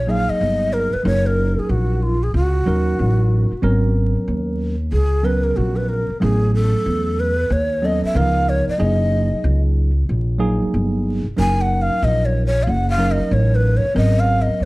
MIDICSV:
0, 0, Header, 1, 5, 480
1, 0, Start_track
1, 0, Tempo, 645161
1, 782, Time_signature, 4, 2, 24, 8
1, 10900, End_track
2, 0, Start_track
2, 0, Title_t, "Shakuhachi"
2, 0, Program_c, 0, 77
2, 0, Note_on_c, 0, 73, 92
2, 74, Note_on_c, 0, 77, 93
2, 85, Note_off_c, 0, 73, 0
2, 221, Note_on_c, 0, 75, 98
2, 232, Note_off_c, 0, 77, 0
2, 544, Note_on_c, 0, 70, 90
2, 555, Note_off_c, 0, 75, 0
2, 694, Note_on_c, 0, 71, 82
2, 705, Note_off_c, 0, 70, 0
2, 783, Note_off_c, 0, 71, 0
2, 792, Note_on_c, 0, 73, 98
2, 940, Note_on_c, 0, 70, 89
2, 951, Note_off_c, 0, 73, 0
2, 1185, Note_on_c, 0, 68, 77
2, 1196, Note_off_c, 0, 70, 0
2, 1267, Note_on_c, 0, 66, 78
2, 1278, Note_off_c, 0, 68, 0
2, 1508, Note_on_c, 0, 65, 85
2, 1519, Note_off_c, 0, 66, 0
2, 1660, Note_on_c, 0, 68, 85
2, 1671, Note_off_c, 0, 65, 0
2, 1746, Note_off_c, 0, 68, 0
2, 1751, Note_on_c, 0, 66, 90
2, 2916, Note_off_c, 0, 66, 0
2, 3665, Note_on_c, 0, 68, 79
2, 3906, Note_on_c, 0, 71, 78
2, 3917, Note_off_c, 0, 68, 0
2, 4046, Note_on_c, 0, 70, 71
2, 4057, Note_off_c, 0, 71, 0
2, 4141, Note_on_c, 0, 66, 76
2, 4152, Note_off_c, 0, 70, 0
2, 4287, Note_on_c, 0, 71, 82
2, 4298, Note_off_c, 0, 66, 0
2, 4381, Note_on_c, 0, 70, 83
2, 4393, Note_off_c, 0, 71, 0
2, 4618, Note_off_c, 0, 70, 0
2, 4622, Note_on_c, 0, 68, 87
2, 4845, Note_off_c, 0, 68, 0
2, 4872, Note_on_c, 0, 69, 101
2, 5356, Note_on_c, 0, 71, 99
2, 5367, Note_off_c, 0, 69, 0
2, 5597, Note_on_c, 0, 73, 89
2, 5608, Note_off_c, 0, 71, 0
2, 5842, Note_on_c, 0, 75, 97
2, 5853, Note_off_c, 0, 73, 0
2, 5982, Note_off_c, 0, 75, 0
2, 5987, Note_on_c, 0, 76, 96
2, 6079, Note_on_c, 0, 77, 106
2, 6090, Note_off_c, 0, 76, 0
2, 6318, Note_on_c, 0, 73, 93
2, 6329, Note_off_c, 0, 77, 0
2, 6459, Note_off_c, 0, 73, 0
2, 6465, Note_on_c, 0, 75, 91
2, 7148, Note_off_c, 0, 75, 0
2, 8482, Note_on_c, 0, 80, 103
2, 8640, Note_on_c, 0, 78, 94
2, 8651, Note_off_c, 0, 80, 0
2, 8793, Note_on_c, 0, 77, 100
2, 8804, Note_off_c, 0, 78, 0
2, 8959, Note_on_c, 0, 75, 99
2, 8970, Note_off_c, 0, 77, 0
2, 9118, Note_on_c, 0, 73, 96
2, 9129, Note_off_c, 0, 75, 0
2, 9270, Note_off_c, 0, 73, 0
2, 9276, Note_on_c, 0, 73, 96
2, 9398, Note_on_c, 0, 77, 78
2, 9409, Note_off_c, 0, 73, 0
2, 9442, Note_on_c, 0, 78, 98
2, 9453, Note_off_c, 0, 77, 0
2, 9592, Note_off_c, 0, 78, 0
2, 9597, Note_on_c, 0, 77, 101
2, 9758, Note_on_c, 0, 75, 98
2, 9769, Note_off_c, 0, 77, 0
2, 9917, Note_on_c, 0, 73, 89
2, 9928, Note_off_c, 0, 75, 0
2, 10083, Note_on_c, 0, 71, 95
2, 10094, Note_off_c, 0, 73, 0
2, 10245, Note_on_c, 0, 73, 86
2, 10256, Note_off_c, 0, 71, 0
2, 10390, Note_off_c, 0, 73, 0
2, 10394, Note_on_c, 0, 75, 96
2, 10562, Note_on_c, 0, 77, 99
2, 10573, Note_off_c, 0, 75, 0
2, 10729, Note_on_c, 0, 75, 93
2, 10740, Note_off_c, 0, 77, 0
2, 10897, Note_off_c, 0, 75, 0
2, 10900, End_track
3, 0, Start_track
3, 0, Title_t, "Tine electric piano"
3, 0, Program_c, 1, 4
3, 53, Note_on_c, 1, 54, 70
3, 56, Note_on_c, 1, 58, 70
3, 60, Note_on_c, 1, 63, 64
3, 65, Note_on_c, 1, 68, 78
3, 690, Note_off_c, 1, 54, 0
3, 692, Note_off_c, 1, 58, 0
3, 693, Note_off_c, 1, 63, 0
3, 696, Note_off_c, 1, 68, 0
3, 768, Note_on_c, 1, 54, 69
3, 775, Note_on_c, 1, 61, 64
3, 779, Note_on_c, 1, 63, 62
3, 785, Note_on_c, 1, 70, 77
3, 1602, Note_off_c, 1, 54, 0
3, 1605, Note_off_c, 1, 61, 0
3, 1607, Note_off_c, 1, 63, 0
3, 1610, Note_off_c, 1, 70, 0
3, 1977, Note_on_c, 1, 54, 77
3, 1980, Note_on_c, 1, 61, 67
3, 1982, Note_on_c, 1, 63, 66
3, 1989, Note_on_c, 1, 70, 80
3, 2612, Note_off_c, 1, 54, 0
3, 2614, Note_off_c, 1, 61, 0
3, 2614, Note_off_c, 1, 63, 0
3, 2618, Note_off_c, 1, 70, 0
3, 2694, Note_on_c, 1, 54, 84
3, 2695, Note_on_c, 1, 59, 76
3, 2703, Note_on_c, 1, 61, 79
3, 2707, Note_on_c, 1, 70, 97
3, 3525, Note_off_c, 1, 54, 0
3, 3525, Note_off_c, 1, 59, 0
3, 3529, Note_off_c, 1, 61, 0
3, 3531, Note_off_c, 1, 70, 0
3, 3891, Note_on_c, 1, 54, 68
3, 3893, Note_on_c, 1, 59, 67
3, 3897, Note_on_c, 1, 61, 69
3, 3902, Note_on_c, 1, 70, 79
3, 4529, Note_off_c, 1, 54, 0
3, 4530, Note_off_c, 1, 59, 0
3, 4532, Note_off_c, 1, 61, 0
3, 4535, Note_off_c, 1, 70, 0
3, 4614, Note_on_c, 1, 54, 73
3, 4619, Note_on_c, 1, 59, 61
3, 4621, Note_on_c, 1, 61, 66
3, 4625, Note_on_c, 1, 57, 73
3, 5445, Note_off_c, 1, 54, 0
3, 5447, Note_off_c, 1, 59, 0
3, 5448, Note_off_c, 1, 61, 0
3, 5450, Note_off_c, 1, 57, 0
3, 5819, Note_on_c, 1, 54, 75
3, 5823, Note_on_c, 1, 59, 69
3, 5826, Note_on_c, 1, 61, 67
3, 5834, Note_on_c, 1, 69, 81
3, 6057, Note_off_c, 1, 59, 0
3, 6060, Note_off_c, 1, 54, 0
3, 6060, Note_on_c, 1, 52, 64
3, 6064, Note_off_c, 1, 61, 0
3, 6066, Note_on_c, 1, 59, 64
3, 6067, Note_on_c, 1, 63, 71
3, 6068, Note_off_c, 1, 69, 0
3, 6073, Note_on_c, 1, 70, 85
3, 6109, Note_on_c, 1, 53, 69
3, 6121, Note_off_c, 1, 52, 0
3, 6486, Note_off_c, 1, 59, 0
3, 6486, Note_off_c, 1, 63, 0
3, 6489, Note_off_c, 1, 70, 0
3, 6507, Note_off_c, 1, 53, 0
3, 6533, Note_on_c, 1, 54, 68
3, 6536, Note_on_c, 1, 58, 66
3, 6539, Note_on_c, 1, 63, 64
3, 6544, Note_on_c, 1, 68, 78
3, 7364, Note_off_c, 1, 54, 0
3, 7366, Note_off_c, 1, 58, 0
3, 7367, Note_off_c, 1, 63, 0
3, 7369, Note_off_c, 1, 68, 0
3, 7728, Note_on_c, 1, 54, 86
3, 7733, Note_on_c, 1, 58, 81
3, 7734, Note_on_c, 1, 63, 82
3, 7737, Note_on_c, 1, 68, 101
3, 8367, Note_off_c, 1, 54, 0
3, 8370, Note_off_c, 1, 58, 0
3, 8370, Note_off_c, 1, 63, 0
3, 8372, Note_off_c, 1, 68, 0
3, 8455, Note_on_c, 1, 54, 72
3, 8460, Note_on_c, 1, 61, 63
3, 8464, Note_on_c, 1, 63, 69
3, 8467, Note_on_c, 1, 70, 77
3, 9285, Note_off_c, 1, 54, 0
3, 9287, Note_off_c, 1, 61, 0
3, 9289, Note_off_c, 1, 63, 0
3, 9291, Note_off_c, 1, 70, 0
3, 9656, Note_on_c, 1, 54, 73
3, 9657, Note_on_c, 1, 61, 68
3, 9663, Note_on_c, 1, 63, 65
3, 9668, Note_on_c, 1, 70, 83
3, 10292, Note_off_c, 1, 54, 0
3, 10292, Note_off_c, 1, 61, 0
3, 10295, Note_off_c, 1, 63, 0
3, 10298, Note_off_c, 1, 70, 0
3, 10374, Note_on_c, 1, 54, 73
3, 10377, Note_on_c, 1, 61, 61
3, 10379, Note_on_c, 1, 59, 63
3, 10385, Note_on_c, 1, 70, 80
3, 10900, Note_off_c, 1, 54, 0
3, 10900, Note_off_c, 1, 59, 0
3, 10900, Note_off_c, 1, 61, 0
3, 10900, Note_off_c, 1, 70, 0
3, 10900, End_track
4, 0, Start_track
4, 0, Title_t, "Upright bass"
4, 0, Program_c, 2, 32
4, 0, Note_on_c, 2, 34, 80
4, 192, Note_off_c, 2, 34, 0
4, 304, Note_on_c, 2, 31, 83
4, 673, Note_off_c, 2, 31, 0
4, 782, Note_on_c, 2, 30, 101
4, 1152, Note_off_c, 2, 30, 0
4, 1260, Note_on_c, 2, 34, 94
4, 1717, Note_off_c, 2, 34, 0
4, 1741, Note_on_c, 2, 37, 91
4, 1969, Note_off_c, 2, 37, 0
4, 1981, Note_on_c, 2, 39, 90
4, 2209, Note_off_c, 2, 39, 0
4, 2225, Note_on_c, 2, 33, 89
4, 2594, Note_off_c, 2, 33, 0
4, 2700, Note_on_c, 2, 32, 93
4, 3071, Note_off_c, 2, 32, 0
4, 3182, Note_on_c, 2, 39, 95
4, 3638, Note_off_c, 2, 39, 0
4, 3659, Note_on_c, 2, 37, 82
4, 4116, Note_off_c, 2, 37, 0
4, 4145, Note_on_c, 2, 34, 86
4, 4514, Note_off_c, 2, 34, 0
4, 4626, Note_on_c, 2, 33, 104
4, 4994, Note_off_c, 2, 33, 0
4, 5104, Note_on_c, 2, 40, 89
4, 5559, Note_off_c, 2, 40, 0
4, 5582, Note_on_c, 2, 39, 96
4, 5952, Note_off_c, 2, 39, 0
4, 6059, Note_on_c, 2, 37, 86
4, 6430, Note_off_c, 2, 37, 0
4, 6545, Note_on_c, 2, 30, 104
4, 6913, Note_off_c, 2, 30, 0
4, 7023, Note_on_c, 2, 37, 97
4, 7479, Note_off_c, 2, 37, 0
4, 7507, Note_on_c, 2, 34, 81
4, 7875, Note_off_c, 2, 34, 0
4, 7990, Note_on_c, 2, 31, 85
4, 8356, Note_off_c, 2, 31, 0
4, 8468, Note_on_c, 2, 30, 96
4, 8835, Note_off_c, 2, 30, 0
4, 8946, Note_on_c, 2, 34, 99
4, 9400, Note_off_c, 2, 34, 0
4, 9428, Note_on_c, 2, 30, 96
4, 9795, Note_off_c, 2, 30, 0
4, 9904, Note_on_c, 2, 33, 98
4, 10273, Note_off_c, 2, 33, 0
4, 10384, Note_on_c, 2, 32, 108
4, 10753, Note_off_c, 2, 32, 0
4, 10863, Note_on_c, 2, 39, 84
4, 10900, Note_off_c, 2, 39, 0
4, 10900, End_track
5, 0, Start_track
5, 0, Title_t, "Muted upright bass strokes"
5, 212, Note_on_c, 9, 29, 43
5, 287, Note_off_c, 9, 29, 0
5, 696, Note_on_c, 9, 29, 45
5, 770, Note_off_c, 9, 29, 0
5, 1173, Note_on_c, 9, 29, 48
5, 1247, Note_off_c, 9, 29, 0
5, 2611, Note_on_c, 9, 29, 47
5, 2686, Note_off_c, 9, 29, 0
5, 3089, Note_on_c, 9, 29, 49
5, 3163, Note_off_c, 9, 29, 0
5, 4534, Note_on_c, 9, 29, 43
5, 4608, Note_off_c, 9, 29, 0
5, 5014, Note_on_c, 9, 29, 51
5, 5088, Note_off_c, 9, 29, 0
5, 5976, Note_on_c, 9, 29, 47
5, 6051, Note_off_c, 9, 29, 0
5, 6452, Note_on_c, 9, 29, 42
5, 6527, Note_off_c, 9, 29, 0
5, 6933, Note_on_c, 9, 29, 48
5, 7008, Note_off_c, 9, 29, 0
5, 7903, Note_on_c, 9, 29, 44
5, 7978, Note_off_c, 9, 29, 0
5, 8385, Note_on_c, 9, 29, 47
5, 8460, Note_off_c, 9, 29, 0
5, 8860, Note_on_c, 9, 29, 48
5, 8935, Note_off_c, 9, 29, 0
5, 9819, Note_on_c, 9, 29, 50
5, 9894, Note_off_c, 9, 29, 0
5, 10298, Note_on_c, 9, 29, 48
5, 10372, Note_off_c, 9, 29, 0
5, 10773, Note_on_c, 9, 29, 50
5, 10847, Note_off_c, 9, 29, 0
5, 10900, End_track
0, 0, End_of_file